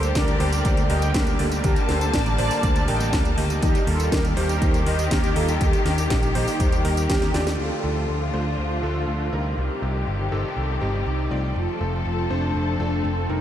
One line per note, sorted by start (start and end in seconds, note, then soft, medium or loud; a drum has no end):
0.00 0.11 D2 loud
0.00 0.37 D3 medium
0.00 3.58 D3 medium
0.00 7.55 G3 medium
0.00 0.37 A#3 medium
0.00 5.57 A#3 medium
0.00 0.37 D4 medium
0.00 0.37 G4 medium
0.00 1.62 G4 medium
0.00 0.14 A4 medium
0.00 0.37 A#4 medium
0.00 0.16 C5 medium
0.00 closed hi-hat soft
0.00 tambourine medium
0.15 0.36 D2 medium
0.15 0.39 A#4 medium
0.15 0.39 D5 medium
0.15 kick loud
0.15 snare loud
0.15 closed hi-hat medium
0.15 tambourine medium
0.28 closed hi-hat soft
0.28 tambourine soft
0.40 0.61 D2 medium
0.40 0.87 D3 loud
0.40 0.87 A#3 medium
0.40 0.87 D4 medium
0.40 0.87 G4 medium
0.40 0.87 A#4 medium
0.40 0.87 C5 loud
0.40 0.91 D5 loud
0.40 open hi-hat loud
0.53 closed hi-hat soft
0.53 tambourine medium
0.65 0.86 D2 loud
0.65 kick loud
0.65 closed hi-hat medium
0.65 tambourine soft
0.77 closed hi-hat soft
0.77 tambourine soft
0.90 1.10 D2 loud
0.90 1.36 D3 loud
0.90 1.36 A#3 medium
0.90 1.36 D4 medium
0.90 1.36 G4 medium
0.90 1.36 A#4 loud
0.90 1.13 D#5 medium
0.90 1.13 G5 loud
0.90 open hi-hat loud
1.02 closed hi-hat soft
1.02 tambourine medium
1.14 1.35 D2 medium
1.14 kick loud
1.14 snare loud
1.14 closed hi-hat medium
1.14 tambourine soft
1.27 closed hi-hat soft
1.27 tambourine soft
1.39 1.60 D2 medium
1.39 1.86 D3 medium
1.39 1.86 A#3 medium
1.39 1.86 D4 medium
1.39 1.86 G4 medium
1.39 1.86 D5 loud
1.39 open hi-hat loud
1.52 closed hi-hat soft
1.52 tambourine medium
1.64 1.74 D2 loud
1.64 1.88 G4 medium
1.64 1.90 A#4 medium
1.64 3.60 A5 medium
1.64 kick loud
1.64 closed hi-hat medium
1.64 tambourine soft
1.76 closed hi-hat soft
1.76 tambourine soft
1.89 2.10 D2 medium
1.89 2.35 D3 medium
1.89 2.35 A#3 medium
1.89 2.35 D4 medium
1.89 2.35 G4 medium
1.89 2.12 A4 medium
1.89 2.35 A#4 medium
1.89 2.12 C5 medium
1.89 snare medium
1.89 open hi-hat loud
2.01 closed hi-hat soft
2.01 tambourine medium
2.13 2.34 A1 medium
2.13 2.37 A#4 medium
2.13 2.37 D5 loud
2.13 kick loud
2.13 snare loud
2.13 closed hi-hat loud
2.13 tambourine medium
2.26 closed hi-hat soft
2.26 tambourine soft
2.38 2.49 A1 loud
2.38 2.85 D3 loud
2.38 2.85 A#3 medium
2.38 2.85 D4 medium
2.38 2.85 G4 medium
2.38 2.85 A#4 medium
2.38 2.85 C5 loud
2.38 2.90 D5 loud
2.38 open hi-hat loud
2.51 open hi-hat medium
2.51 tambourine medium
2.63 2.84 D2 medium
2.63 kick loud
2.63 closed hi-hat medium
2.63 tambourine medium
2.76 closed hi-hat soft
2.76 tambourine soft
2.88 3.09 A1 medium
2.88 3.35 D3 loud
2.88 3.35 A#3 medium
2.88 3.35 D4 medium
2.88 3.35 G4 medium
2.88 3.35 A#4 loud
2.88 3.12 D#5 medium
2.88 3.11 G5 loud
2.88 open hi-hat loud
3.00 closed hi-hat soft
3.00 tambourine medium
3.13 3.33 D2 medium
3.13 kick loud
3.13 snare loud
3.13 closed hi-hat medium
3.13 tambourine medium
3.25 closed hi-hat soft
3.25 tambourine soft
3.37 3.58 D2 medium
3.37 3.84 D#3 medium
3.37 3.84 A#3 medium
3.37 3.84 D#4 medium
3.37 3.84 G4 medium
3.37 3.84 D#5 loud
3.37 open hi-hat loud
3.50 closed hi-hat soft
3.50 tambourine medium
3.62 3.73 D#2 loud
3.62 7.55 D#3 medium
3.62 3.86 D#4 medium
3.62 7.55 G4 medium
3.62 3.88 G4 loud
3.62 kick loud
3.62 closed hi-hat medium
3.62 tambourine medium
3.75 closed hi-hat soft
3.75 tambourine soft
3.87 4.08 D#2 loud
3.87 4.34 D#3 medium
3.87 4.34 A#3 medium
3.87 4.34 D#4 medium
3.87 4.11 F4 medium
3.87 4.34 G4 medium
3.87 4.13 A4 medium
3.87 4.34 A#4 medium
3.87 open hi-hat loud
4.00 closed hi-hat soft
4.00 tambourine medium
4.12 4.33 D#2 medium
4.12 4.24 G4 medium
4.12 4.23 A#4 loud
4.12 kick loud
4.12 snare loud
4.12 closed hi-hat medium
4.12 tambourine medium
4.25 closed hi-hat soft
4.25 tambourine soft
4.37 4.57 D#2 medium
4.37 4.83 D#3 medium
4.37 4.83 A#3 medium
4.37 4.83 D#4 medium
4.37 4.83 G4 medium
4.37 4.83 A#4 loud
4.37 4.83 C5 loud
4.37 open hi-hat loud
4.49 closed hi-hat soft
4.49 tambourine medium
4.62 4.82 D#2 loud
4.62 kick loud
4.62 closed hi-hat medium
4.62 tambourine medium
4.74 closed hi-hat soft
4.74 tambourine soft
4.86 5.07 D#2 loud
4.86 5.33 D#3 medium
4.86 5.33 A#3 medium
4.86 5.33 D#4 medium
4.86 5.33 G4 medium
4.86 5.33 A#4 loud
4.86 5.10 C5 medium
4.86 5.12 D#5 loud
4.86 open hi-hat loud
4.99 closed hi-hat soft
4.99 tambourine medium
5.11 5.32 D#2 loud
5.11 5.35 G4 medium
5.11 5.34 A#4 loud
5.11 kick loud
5.11 snare loud
5.11 closed hi-hat loud
5.11 tambourine medium
5.24 closed hi-hat soft
5.24 tambourine soft
5.36 5.57 D#2 medium
5.36 5.83 D#3 medium
5.36 5.83 A#3 medium
5.36 5.83 D#4 medium
5.36 5.59 F4 medium
5.36 5.83 G4 medium
5.36 5.62 A4 loud
5.36 5.83 D#5 loud
5.36 open hi-hat loud
5.48 closed hi-hat soft
5.48 tambourine medium
5.61 5.71 D#2 loud
5.61 7.06 D#4 medium
5.61 7.06 G4 loud
5.61 kick loud
5.61 closed hi-hat loud
5.61 tambourine medium
5.73 closed hi-hat soft
5.73 tambourine soft
5.86 6.06 D#2 loud
5.86 6.32 D#3 medium
5.86 6.32 A#3 medium
5.86 6.32 D#4 medium
5.86 6.32 G4 medium
5.86 6.32 A#4 medium
5.86 snare medium
5.86 open hi-hat loud
5.98 closed hi-hat soft
5.98 tambourine medium
6.10 6.31 A#1 medium
6.10 kick loud
6.10 snare loud
6.10 closed hi-hat loud
6.10 tambourine medium
6.23 closed hi-hat soft
6.23 tambourine soft
6.35 6.45 A#1 loud
6.35 6.82 D#3 loud
6.35 6.82 A#3 medium
6.35 6.82 D#4 medium
6.35 6.82 G4 medium
6.35 6.82 C5 loud
6.35 open hi-hat loud
6.48 open hi-hat medium
6.48 tambourine medium
6.60 6.81 D#2 medium
6.60 kick loud
6.60 closed hi-hat medium
6.60 tambourine soft
6.72 closed hi-hat soft
6.72 tambourine soft
6.85 7.05 D#2 medium
6.85 7.31 D#3 loud
6.85 7.31 A#3 medium
6.85 7.31 D#4 medium
6.85 7.31 G4 medium
6.85 7.31 A#4 loud
6.85 open hi-hat loud
6.97 closed hi-hat soft
6.97 tambourine medium
7.09 7.30 D#2 loud
7.09 7.61 G4 loud
7.09 kick loud
7.09 snare loud
7.09 closed hi-hat loud
7.09 tambourine medium
7.22 snare medium
7.22 closed hi-hat soft
7.22 tambourine soft
7.34 7.55 D#2 medium
7.34 7.81 D3 medium
7.34 7.81 A3 medium
7.34 7.81 D4 medium
7.34 7.81 F4 medium
7.34 7.81 D5 medium
7.34 snare medium
7.34 open hi-hat loud
7.47 snare medium
7.47 closed hi-hat soft
7.47 tambourine medium
7.59 7.69 D2 medium
7.59 9.55 D3 medium
7.59 9.55 F3 medium
7.59 9.55 A3 medium
7.59 9.55 F4 medium
7.59 8.36 A4 loud
7.59 closed hi-hat medium
7.84 8.05 D2 medium
7.84 8.31 D3 medium
7.84 8.31 A3 medium
7.84 8.31 D4 medium
7.84 8.31 F4 medium
7.84 8.31 A4 medium
7.84 closed hi-hat medium
7.96 closed hi-hat soft
8.09 8.29 D2 medium
8.09 closed hi-hat medium
8.33 8.54 D2 medium
8.33 8.80 D3 medium
8.33 8.80 A3 medium
8.33 8.80 D4 medium
8.33 8.80 F4 medium
8.33 8.57 F4 medium
8.33 8.80 C5 medium
8.33 closed hi-hat medium
8.58 8.79 D2 medium
8.58 9.35 F4 medium
8.58 closed hi-hat medium
8.71 closed hi-hat soft
8.83 9.04 D2 medium
8.83 9.30 D3 medium
8.83 9.30 A3 medium
8.83 9.30 D4 medium
8.83 9.30 F4 medium
8.83 9.30 A4 medium
8.96 closed hi-hat soft
9.08 9.29 D2 medium
9.08 closed hi-hat medium
9.20 closed hi-hat soft
9.33 9.53 D2 medium
9.33 9.79 C3 medium
9.33 9.79 G3 medium
9.33 9.79 C4 medium
9.33 9.79 D#4 medium
9.33 10.03 G4 medium
9.33 9.79 A#4 medium
9.33 closed hi-hat medium
9.45 closed hi-hat soft
9.57 9.68 C2 medium
9.57 11.54 D#3 medium
9.57 11.54 G3 medium
9.57 11.54 C4 medium
9.57 11.54 G4 medium
9.57 closed hi-hat medium
9.70 closed hi-hat soft
9.82 10.03 C2 medium
9.82 10.29 C3 medium
9.82 10.29 G3 medium
9.82 10.29 C4 medium
9.82 10.29 D#4 medium
9.82 10.29 G4 medium
9.82 closed hi-hat medium
9.95 closed hi-hat soft
10.07 10.28 G1 medium
10.07 closed hi-hat medium
10.20 closed hi-hat soft
10.32 10.42 G1 medium
10.32 10.79 C3 medium
10.32 10.79 G3 medium
10.32 10.79 C4 medium
10.32 10.79 D#4 medium
10.32 10.79 A4 medium
10.32 closed hi-hat medium
10.44 closed hi-hat soft
10.57 10.77 C2 medium
10.57 closed hi-hat medium
10.69 closed hi-hat soft
10.81 11.02 G1 medium
10.81 11.28 C3 medium
10.81 11.28 G3 medium
10.81 11.28 C4 medium
10.81 11.28 D#4 medium
10.81 11.28 G4 medium
10.94 closed hi-hat soft
11.06 11.27 C2 medium
11.06 11.57 D#4 loud
11.06 closed hi-hat medium
11.19 closed hi-hat soft
11.31 11.52 C2 medium
11.31 11.78 A3 medium
11.31 11.78 C4 medium
11.31 11.78 F4 medium
11.31 11.78 D5 medium
11.31 closed hi-hat medium
11.43 closed hi-hat soft
11.56 11.66 F1 medium
11.56 13.41 F3 medium
11.56 13.41 A3 medium
11.56 13.41 C4 medium
11.56 12.33 F4 loud
11.56 13.41 A4 medium
11.56 closed hi-hat medium
11.68 closed hi-hat soft
11.81 12.01 F1 loud
11.81 12.27 A3 medium
11.81 12.27 C4 medium
11.81 12.27 F4 medium
11.81 12.27 A4 medium
11.81 closed hi-hat medium
11.93 closed hi-hat soft
12.05 12.26 F1 medium
12.05 closed hi-hat medium
12.18 closed hi-hat soft
12.30 12.51 F1 medium
12.30 12.77 A3 medium
12.30 12.77 C4 medium
12.30 12.54 D4 loud
12.30 12.77 F4 medium
12.30 12.77 C5 loud
12.30 closed hi-hat medium
12.43 closed hi-hat soft
12.55 12.76 F1 medium
12.55 13.32 D4 loud
12.55 closed hi-hat medium
12.67 closed hi-hat soft
12.80 13.00 F1 loud
12.80 13.26 A3 medium
12.80 13.26 C4 medium
12.80 13.26 F4 medium
12.80 13.26 A4 loud
12.92 closed hi-hat soft
13.04 13.25 F1 medium
13.04 closed hi-hat medium
13.17 closed hi-hat soft
13.29 13.41 F1 medium
13.29 13.41 C3 medium
13.29 13.41 G3 medium
13.29 13.41 C4 medium
13.29 13.41 D#4 medium
13.29 13.41 A#4 medium
13.29 closed hi-hat medium